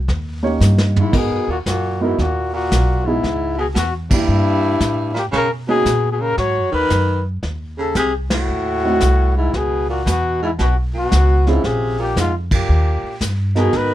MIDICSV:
0, 0, Header, 1, 7, 480
1, 0, Start_track
1, 0, Key_signature, 5, "minor"
1, 0, Tempo, 524934
1, 1039, Time_signature, 4, 2, 24, 8
1, 12748, End_track
2, 0, Start_track
2, 0, Title_t, "Trumpet"
2, 0, Program_c, 0, 56
2, 919, Note_on_c, 0, 64, 77
2, 1069, Note_on_c, 0, 68, 88
2, 1083, Note_off_c, 0, 64, 0
2, 1376, Note_off_c, 0, 68, 0
2, 1386, Note_on_c, 0, 66, 61
2, 1452, Note_off_c, 0, 66, 0
2, 1536, Note_on_c, 0, 66, 76
2, 1853, Note_on_c, 0, 64, 75
2, 1866, Note_off_c, 0, 66, 0
2, 2005, Note_off_c, 0, 64, 0
2, 2017, Note_on_c, 0, 66, 77
2, 2309, Note_off_c, 0, 66, 0
2, 2339, Note_on_c, 0, 66, 81
2, 2805, Note_on_c, 0, 64, 83
2, 2819, Note_off_c, 0, 66, 0
2, 3284, Note_off_c, 0, 64, 0
2, 3288, Note_on_c, 0, 68, 72
2, 3357, Note_off_c, 0, 68, 0
2, 3456, Note_on_c, 0, 66, 75
2, 3597, Note_off_c, 0, 66, 0
2, 3783, Note_on_c, 0, 64, 89
2, 4696, Note_off_c, 0, 64, 0
2, 4739, Note_on_c, 0, 67, 71
2, 4807, Note_off_c, 0, 67, 0
2, 4901, Note_on_c, 0, 70, 92
2, 5042, Note_off_c, 0, 70, 0
2, 5209, Note_on_c, 0, 68, 97
2, 5578, Note_off_c, 0, 68, 0
2, 5597, Note_on_c, 0, 68, 64
2, 5684, Note_on_c, 0, 70, 95
2, 5697, Note_off_c, 0, 68, 0
2, 5836, Note_off_c, 0, 70, 0
2, 5841, Note_on_c, 0, 73, 90
2, 6141, Note_off_c, 0, 73, 0
2, 6167, Note_on_c, 0, 71, 93
2, 6611, Note_off_c, 0, 71, 0
2, 7133, Note_on_c, 0, 69, 84
2, 7275, Note_off_c, 0, 69, 0
2, 7299, Note_on_c, 0, 68, 90
2, 7440, Note_off_c, 0, 68, 0
2, 7616, Note_on_c, 0, 66, 92
2, 8532, Note_off_c, 0, 66, 0
2, 8572, Note_on_c, 0, 64, 82
2, 8744, Note_on_c, 0, 68, 94
2, 8757, Note_off_c, 0, 64, 0
2, 9054, Note_off_c, 0, 68, 0
2, 9062, Note_on_c, 0, 66, 69
2, 9199, Note_off_c, 0, 66, 0
2, 9237, Note_on_c, 0, 66, 84
2, 9519, Note_off_c, 0, 66, 0
2, 9553, Note_on_c, 0, 64, 76
2, 9617, Note_off_c, 0, 64, 0
2, 9714, Note_on_c, 0, 66, 79
2, 9851, Note_off_c, 0, 66, 0
2, 10045, Note_on_c, 0, 66, 89
2, 10506, Note_on_c, 0, 64, 74
2, 10519, Note_off_c, 0, 66, 0
2, 10662, Note_on_c, 0, 68, 89
2, 10676, Note_off_c, 0, 64, 0
2, 10972, Note_off_c, 0, 68, 0
2, 10997, Note_on_c, 0, 67, 78
2, 11127, Note_off_c, 0, 67, 0
2, 11161, Note_on_c, 0, 65, 78
2, 11297, Note_off_c, 0, 65, 0
2, 11476, Note_on_c, 0, 67, 73
2, 12055, Note_off_c, 0, 67, 0
2, 12426, Note_on_c, 0, 68, 91
2, 12589, Note_on_c, 0, 71, 102
2, 12603, Note_off_c, 0, 68, 0
2, 12748, Note_off_c, 0, 71, 0
2, 12748, End_track
3, 0, Start_track
3, 0, Title_t, "Grand piano"
3, 0, Program_c, 1, 0
3, 390, Note_on_c, 1, 58, 66
3, 393, Note_on_c, 1, 61, 62
3, 395, Note_on_c, 1, 63, 60
3, 398, Note_on_c, 1, 67, 61
3, 402, Note_on_c, 1, 73, 83
3, 1002, Note_off_c, 1, 58, 0
3, 1003, Note_off_c, 1, 61, 0
3, 1004, Note_off_c, 1, 63, 0
3, 1006, Note_off_c, 1, 67, 0
3, 1008, Note_off_c, 1, 73, 0
3, 1021, Note_on_c, 1, 59, 59
3, 1024, Note_on_c, 1, 63, 56
3, 1026, Note_on_c, 1, 66, 49
3, 1034, Note_on_c, 1, 70, 66
3, 1320, Note_off_c, 1, 59, 0
3, 1322, Note_off_c, 1, 63, 0
3, 1322, Note_off_c, 1, 66, 0
3, 1326, Note_off_c, 1, 70, 0
3, 1835, Note_on_c, 1, 59, 65
3, 1844, Note_on_c, 1, 66, 60
3, 1845, Note_on_c, 1, 63, 61
3, 1854, Note_on_c, 1, 70, 71
3, 1980, Note_off_c, 1, 59, 0
3, 1985, Note_off_c, 1, 63, 0
3, 1985, Note_off_c, 1, 66, 0
3, 1990, Note_off_c, 1, 70, 0
3, 2805, Note_on_c, 1, 59, 57
3, 2810, Note_on_c, 1, 63, 42
3, 2811, Note_on_c, 1, 64, 50
3, 2820, Note_on_c, 1, 68, 63
3, 2945, Note_off_c, 1, 59, 0
3, 2948, Note_off_c, 1, 63, 0
3, 2948, Note_off_c, 1, 64, 0
3, 2953, Note_off_c, 1, 68, 0
3, 3765, Note_on_c, 1, 58, 56
3, 3774, Note_on_c, 1, 62, 53
3, 3779, Note_on_c, 1, 64, 54
3, 3783, Note_on_c, 1, 67, 69
3, 4370, Note_off_c, 1, 58, 0
3, 4375, Note_off_c, 1, 62, 0
3, 4377, Note_off_c, 1, 64, 0
3, 4379, Note_off_c, 1, 67, 0
3, 5196, Note_on_c, 1, 61, 53
3, 5199, Note_on_c, 1, 58, 59
3, 5200, Note_on_c, 1, 63, 59
3, 5210, Note_on_c, 1, 66, 65
3, 5341, Note_off_c, 1, 61, 0
3, 5343, Note_off_c, 1, 58, 0
3, 5344, Note_off_c, 1, 63, 0
3, 5348, Note_off_c, 1, 66, 0
3, 8080, Note_on_c, 1, 57, 62
3, 8083, Note_on_c, 1, 60, 50
3, 8088, Note_on_c, 1, 63, 53
3, 8093, Note_on_c, 1, 66, 67
3, 8223, Note_off_c, 1, 57, 0
3, 8224, Note_off_c, 1, 60, 0
3, 8227, Note_off_c, 1, 63, 0
3, 8230, Note_off_c, 1, 66, 0
3, 10486, Note_on_c, 1, 60, 64
3, 10491, Note_on_c, 1, 61, 59
3, 10494, Note_on_c, 1, 65, 58
3, 10500, Note_on_c, 1, 68, 73
3, 11089, Note_off_c, 1, 60, 0
3, 11092, Note_off_c, 1, 61, 0
3, 11094, Note_off_c, 1, 65, 0
3, 11096, Note_off_c, 1, 68, 0
3, 12394, Note_on_c, 1, 63, 60
3, 12395, Note_on_c, 1, 59, 61
3, 12401, Note_on_c, 1, 66, 55
3, 12405, Note_on_c, 1, 70, 74
3, 12748, Note_off_c, 1, 59, 0
3, 12748, Note_off_c, 1, 63, 0
3, 12748, Note_off_c, 1, 66, 0
3, 12748, Note_off_c, 1, 70, 0
3, 12748, End_track
4, 0, Start_track
4, 0, Title_t, "Baritone saxophone"
4, 0, Program_c, 2, 67
4, 891, Note_on_c, 2, 44, 67
4, 1043, Note_on_c, 2, 47, 69
4, 1057, Note_off_c, 2, 44, 0
4, 1359, Note_off_c, 2, 47, 0
4, 1365, Note_on_c, 2, 46, 56
4, 1435, Note_off_c, 2, 46, 0
4, 1533, Note_on_c, 2, 46, 66
4, 1848, Note_on_c, 2, 44, 59
4, 1861, Note_off_c, 2, 46, 0
4, 1988, Note_off_c, 2, 44, 0
4, 1994, Note_on_c, 2, 46, 66
4, 2296, Note_off_c, 2, 46, 0
4, 2315, Note_on_c, 2, 46, 79
4, 2788, Note_on_c, 2, 44, 66
4, 2801, Note_off_c, 2, 46, 0
4, 3266, Note_off_c, 2, 44, 0
4, 3271, Note_on_c, 2, 47, 61
4, 3345, Note_off_c, 2, 47, 0
4, 3420, Note_on_c, 2, 47, 66
4, 3567, Note_off_c, 2, 47, 0
4, 3749, Note_on_c, 2, 43, 76
4, 4679, Note_off_c, 2, 43, 0
4, 4696, Note_on_c, 2, 46, 58
4, 4773, Note_off_c, 2, 46, 0
4, 4864, Note_on_c, 2, 49, 79
4, 5011, Note_off_c, 2, 49, 0
4, 5194, Note_on_c, 2, 47, 75
4, 5570, Note_off_c, 2, 47, 0
4, 5590, Note_on_c, 2, 47, 56
4, 5667, Note_on_c, 2, 49, 69
4, 5681, Note_off_c, 2, 47, 0
4, 5818, Note_off_c, 2, 49, 0
4, 5823, Note_on_c, 2, 54, 77
4, 6131, Note_off_c, 2, 54, 0
4, 6139, Note_on_c, 2, 51, 90
4, 6597, Note_off_c, 2, 51, 0
4, 7113, Note_on_c, 2, 49, 72
4, 7264, Note_off_c, 2, 49, 0
4, 7278, Note_on_c, 2, 48, 73
4, 7423, Note_off_c, 2, 48, 0
4, 7594, Note_on_c, 2, 45, 87
4, 8521, Note_off_c, 2, 45, 0
4, 8568, Note_on_c, 2, 44, 67
4, 8720, Note_on_c, 2, 47, 83
4, 8733, Note_off_c, 2, 44, 0
4, 9039, Note_off_c, 2, 47, 0
4, 9044, Note_on_c, 2, 46, 67
4, 9185, Note_off_c, 2, 46, 0
4, 9190, Note_on_c, 2, 47, 75
4, 9494, Note_off_c, 2, 47, 0
4, 9529, Note_on_c, 2, 44, 64
4, 9598, Note_off_c, 2, 44, 0
4, 9680, Note_on_c, 2, 47, 62
4, 9825, Note_off_c, 2, 47, 0
4, 10003, Note_on_c, 2, 47, 78
4, 10485, Note_on_c, 2, 44, 63
4, 10498, Note_off_c, 2, 47, 0
4, 10640, Note_on_c, 2, 48, 79
4, 10654, Note_off_c, 2, 44, 0
4, 10958, Note_off_c, 2, 48, 0
4, 10964, Note_on_c, 2, 46, 67
4, 11109, Note_off_c, 2, 46, 0
4, 11128, Note_on_c, 2, 44, 63
4, 11271, Note_off_c, 2, 44, 0
4, 11453, Note_on_c, 2, 46, 67
4, 12043, Note_off_c, 2, 46, 0
4, 12403, Note_on_c, 2, 47, 77
4, 12570, Note_on_c, 2, 51, 88
4, 12584, Note_off_c, 2, 47, 0
4, 12748, Note_off_c, 2, 51, 0
4, 12748, End_track
5, 0, Start_track
5, 0, Title_t, "Upright bass"
5, 0, Program_c, 3, 32
5, 76, Note_on_c, 3, 39, 98
5, 543, Note_off_c, 3, 39, 0
5, 552, Note_on_c, 3, 43, 108
5, 1021, Note_off_c, 3, 43, 0
5, 1040, Note_on_c, 3, 44, 74
5, 1192, Note_on_c, 3, 42, 48
5, 1205, Note_off_c, 3, 44, 0
5, 1347, Note_off_c, 3, 42, 0
5, 1353, Note_on_c, 3, 39, 62
5, 1505, Note_off_c, 3, 39, 0
5, 1520, Note_on_c, 3, 42, 78
5, 1985, Note_off_c, 3, 42, 0
5, 1999, Note_on_c, 3, 39, 85
5, 2465, Note_off_c, 3, 39, 0
5, 2479, Note_on_c, 3, 35, 87
5, 2945, Note_off_c, 3, 35, 0
5, 2956, Note_on_c, 3, 37, 73
5, 3424, Note_off_c, 3, 37, 0
5, 3436, Note_on_c, 3, 40, 83
5, 3904, Note_off_c, 3, 40, 0
5, 3915, Note_on_c, 3, 43, 87
5, 4383, Note_off_c, 3, 43, 0
5, 4393, Note_on_c, 3, 45, 80
5, 4863, Note_off_c, 3, 45, 0
5, 4875, Note_on_c, 3, 47, 74
5, 5344, Note_off_c, 3, 47, 0
5, 5353, Note_on_c, 3, 46, 83
5, 5823, Note_off_c, 3, 46, 0
5, 5830, Note_on_c, 3, 44, 85
5, 5993, Note_on_c, 3, 42, 58
5, 6007, Note_off_c, 3, 44, 0
5, 6149, Note_off_c, 3, 42, 0
5, 6154, Note_on_c, 3, 39, 62
5, 6306, Note_off_c, 3, 39, 0
5, 6315, Note_on_c, 3, 42, 89
5, 6783, Note_off_c, 3, 42, 0
5, 6795, Note_on_c, 3, 39, 75
5, 7263, Note_off_c, 3, 39, 0
5, 7269, Note_on_c, 3, 36, 81
5, 7740, Note_off_c, 3, 36, 0
5, 7762, Note_on_c, 3, 39, 79
5, 8227, Note_off_c, 3, 39, 0
5, 8238, Note_on_c, 3, 36, 90
5, 8704, Note_off_c, 3, 36, 0
5, 8720, Note_on_c, 3, 37, 69
5, 9185, Note_off_c, 3, 37, 0
5, 9203, Note_on_c, 3, 40, 80
5, 9667, Note_off_c, 3, 40, 0
5, 9684, Note_on_c, 3, 35, 85
5, 10147, Note_off_c, 3, 35, 0
5, 10167, Note_on_c, 3, 37, 92
5, 10629, Note_off_c, 3, 37, 0
5, 10644, Note_on_c, 3, 34, 77
5, 11107, Note_off_c, 3, 34, 0
5, 11121, Note_on_c, 3, 41, 84
5, 11585, Note_off_c, 3, 41, 0
5, 11603, Note_on_c, 3, 39, 84
5, 11900, Note_off_c, 3, 39, 0
5, 12077, Note_on_c, 3, 43, 90
5, 12543, Note_off_c, 3, 43, 0
5, 12556, Note_on_c, 3, 44, 74
5, 12748, Note_off_c, 3, 44, 0
5, 12748, End_track
6, 0, Start_track
6, 0, Title_t, "Muted upright bass strokes"
6, 11916, Note_on_c, 9, 29, 37
6, 12007, Note_off_c, 9, 29, 0
6, 12748, End_track
7, 0, Start_track
7, 0, Title_t, "Drums"
7, 75, Note_on_c, 9, 36, 30
7, 79, Note_on_c, 9, 25, 48
7, 79, Note_on_c, 9, 38, 48
7, 167, Note_off_c, 9, 36, 0
7, 170, Note_off_c, 9, 38, 0
7, 560, Note_on_c, 9, 38, 46
7, 561, Note_on_c, 9, 44, 49
7, 652, Note_off_c, 9, 38, 0
7, 653, Note_off_c, 9, 44, 0
7, 716, Note_on_c, 9, 38, 59
7, 808, Note_off_c, 9, 38, 0
7, 881, Note_on_c, 9, 43, 81
7, 972, Note_off_c, 9, 43, 0
7, 1034, Note_off_c, 9, 25, 0
7, 1034, Note_on_c, 9, 25, 38
7, 1034, Note_on_c, 9, 38, 39
7, 1034, Note_on_c, 9, 49, 57
7, 1036, Note_on_c, 9, 36, 65
7, 1125, Note_off_c, 9, 38, 0
7, 1125, Note_off_c, 9, 49, 0
7, 1127, Note_off_c, 9, 36, 0
7, 1517, Note_on_c, 9, 36, 23
7, 1520, Note_on_c, 9, 38, 51
7, 1521, Note_on_c, 9, 44, 48
7, 1609, Note_off_c, 9, 36, 0
7, 1612, Note_off_c, 9, 38, 0
7, 1613, Note_off_c, 9, 44, 0
7, 1998, Note_on_c, 9, 36, 23
7, 2003, Note_off_c, 9, 25, 0
7, 2003, Note_on_c, 9, 25, 53
7, 2003, Note_on_c, 9, 38, 40
7, 2090, Note_off_c, 9, 36, 0
7, 2094, Note_off_c, 9, 38, 0
7, 2478, Note_on_c, 9, 36, 21
7, 2483, Note_on_c, 9, 38, 49
7, 2484, Note_on_c, 9, 44, 54
7, 2570, Note_off_c, 9, 36, 0
7, 2575, Note_off_c, 9, 38, 0
7, 2576, Note_off_c, 9, 44, 0
7, 2958, Note_on_c, 9, 36, 18
7, 2962, Note_off_c, 9, 25, 0
7, 2962, Note_on_c, 9, 25, 40
7, 2962, Note_on_c, 9, 38, 39
7, 3050, Note_off_c, 9, 36, 0
7, 3053, Note_off_c, 9, 38, 0
7, 3436, Note_on_c, 9, 36, 23
7, 3438, Note_on_c, 9, 38, 55
7, 3439, Note_on_c, 9, 44, 51
7, 3528, Note_off_c, 9, 36, 0
7, 3529, Note_off_c, 9, 38, 0
7, 3530, Note_off_c, 9, 44, 0
7, 3756, Note_on_c, 9, 51, 67
7, 3757, Note_on_c, 9, 36, 71
7, 3848, Note_off_c, 9, 36, 0
7, 3848, Note_off_c, 9, 51, 0
7, 3913, Note_off_c, 9, 25, 0
7, 3913, Note_on_c, 9, 25, 42
7, 4393, Note_on_c, 9, 38, 48
7, 4394, Note_on_c, 9, 36, 22
7, 4394, Note_on_c, 9, 44, 47
7, 4484, Note_off_c, 9, 38, 0
7, 4485, Note_off_c, 9, 36, 0
7, 4485, Note_off_c, 9, 44, 0
7, 4719, Note_on_c, 9, 38, 32
7, 4811, Note_off_c, 9, 38, 0
7, 4873, Note_on_c, 9, 36, 23
7, 4875, Note_off_c, 9, 25, 0
7, 4875, Note_on_c, 9, 25, 45
7, 4875, Note_on_c, 9, 38, 36
7, 4964, Note_off_c, 9, 36, 0
7, 4966, Note_off_c, 9, 38, 0
7, 5353, Note_on_c, 9, 36, 22
7, 5355, Note_on_c, 9, 38, 53
7, 5356, Note_on_c, 9, 44, 48
7, 5444, Note_off_c, 9, 36, 0
7, 5446, Note_off_c, 9, 38, 0
7, 5447, Note_off_c, 9, 44, 0
7, 5831, Note_on_c, 9, 36, 20
7, 5832, Note_off_c, 9, 25, 0
7, 5832, Note_on_c, 9, 25, 47
7, 5832, Note_on_c, 9, 38, 42
7, 5922, Note_off_c, 9, 36, 0
7, 5923, Note_off_c, 9, 38, 0
7, 6312, Note_on_c, 9, 36, 21
7, 6312, Note_on_c, 9, 38, 50
7, 6312, Note_on_c, 9, 44, 40
7, 6403, Note_off_c, 9, 36, 0
7, 6403, Note_off_c, 9, 38, 0
7, 6404, Note_off_c, 9, 44, 0
7, 6791, Note_on_c, 9, 36, 19
7, 6793, Note_off_c, 9, 25, 0
7, 6793, Note_on_c, 9, 25, 38
7, 6793, Note_on_c, 9, 38, 39
7, 6883, Note_off_c, 9, 36, 0
7, 6884, Note_off_c, 9, 38, 0
7, 7270, Note_on_c, 9, 38, 57
7, 7271, Note_on_c, 9, 44, 54
7, 7272, Note_on_c, 9, 36, 19
7, 7361, Note_off_c, 9, 38, 0
7, 7362, Note_off_c, 9, 44, 0
7, 7363, Note_off_c, 9, 36, 0
7, 7592, Note_on_c, 9, 38, 76
7, 7593, Note_on_c, 9, 51, 58
7, 7684, Note_off_c, 9, 38, 0
7, 7685, Note_off_c, 9, 51, 0
7, 7754, Note_off_c, 9, 25, 0
7, 7754, Note_on_c, 9, 25, 43
7, 8233, Note_on_c, 9, 38, 54
7, 8234, Note_on_c, 9, 44, 53
7, 8237, Note_on_c, 9, 36, 20
7, 8325, Note_off_c, 9, 38, 0
7, 8325, Note_off_c, 9, 44, 0
7, 8328, Note_off_c, 9, 36, 0
7, 8719, Note_on_c, 9, 36, 21
7, 8722, Note_off_c, 9, 25, 0
7, 8722, Note_on_c, 9, 25, 41
7, 8722, Note_on_c, 9, 38, 40
7, 8811, Note_off_c, 9, 36, 0
7, 8814, Note_off_c, 9, 38, 0
7, 9203, Note_on_c, 9, 36, 26
7, 9207, Note_on_c, 9, 38, 50
7, 9208, Note_on_c, 9, 44, 50
7, 9295, Note_off_c, 9, 36, 0
7, 9299, Note_off_c, 9, 38, 0
7, 9300, Note_off_c, 9, 44, 0
7, 9683, Note_off_c, 9, 25, 0
7, 9683, Note_on_c, 9, 25, 51
7, 9683, Note_on_c, 9, 36, 19
7, 9683, Note_on_c, 9, 38, 41
7, 9775, Note_off_c, 9, 36, 0
7, 9775, Note_off_c, 9, 38, 0
7, 10163, Note_on_c, 9, 36, 19
7, 10166, Note_on_c, 9, 38, 51
7, 10167, Note_on_c, 9, 44, 51
7, 10255, Note_off_c, 9, 36, 0
7, 10258, Note_off_c, 9, 38, 0
7, 10259, Note_off_c, 9, 44, 0
7, 10486, Note_on_c, 9, 38, 31
7, 10577, Note_off_c, 9, 38, 0
7, 10643, Note_on_c, 9, 36, 21
7, 10645, Note_off_c, 9, 25, 0
7, 10645, Note_on_c, 9, 25, 45
7, 10645, Note_on_c, 9, 38, 40
7, 10734, Note_off_c, 9, 36, 0
7, 10736, Note_off_c, 9, 38, 0
7, 11122, Note_on_c, 9, 36, 23
7, 11126, Note_on_c, 9, 38, 56
7, 11127, Note_on_c, 9, 44, 53
7, 11213, Note_off_c, 9, 36, 0
7, 11217, Note_off_c, 9, 38, 0
7, 11218, Note_off_c, 9, 44, 0
7, 11442, Note_on_c, 9, 36, 68
7, 11442, Note_on_c, 9, 51, 69
7, 11533, Note_off_c, 9, 36, 0
7, 11534, Note_off_c, 9, 51, 0
7, 11598, Note_off_c, 9, 25, 0
7, 11598, Note_on_c, 9, 25, 51
7, 12077, Note_on_c, 9, 36, 19
7, 12078, Note_on_c, 9, 38, 52
7, 12079, Note_on_c, 9, 44, 55
7, 12168, Note_off_c, 9, 36, 0
7, 12169, Note_off_c, 9, 38, 0
7, 12170, Note_off_c, 9, 44, 0
7, 12398, Note_on_c, 9, 38, 33
7, 12489, Note_off_c, 9, 38, 0
7, 12553, Note_off_c, 9, 25, 0
7, 12553, Note_on_c, 9, 25, 45
7, 12553, Note_on_c, 9, 38, 37
7, 12554, Note_on_c, 9, 36, 21
7, 12644, Note_off_c, 9, 38, 0
7, 12645, Note_off_c, 9, 36, 0
7, 12748, Note_off_c, 9, 25, 0
7, 12748, End_track
0, 0, End_of_file